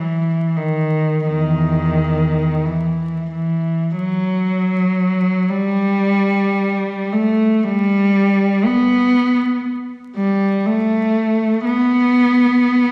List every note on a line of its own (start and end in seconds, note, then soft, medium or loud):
0.00 0.55 E3 soft
0.56 1.25 D#3 soft
1.27 2.62 E2 soft
1.27 2.63 D#3 medium
2.65 3.30 E3 soft
3.31 3.93 E3 soft
3.97 5.47 F#3 medium
5.49 7.14 G3 medium
7.13 7.64 A3 medium
7.63 8.64 G3 medium
8.65 9.66 B3 medium
10.16 10.63 G3 medium
10.66 11.65 A3 medium
11.65 12.92 B3 medium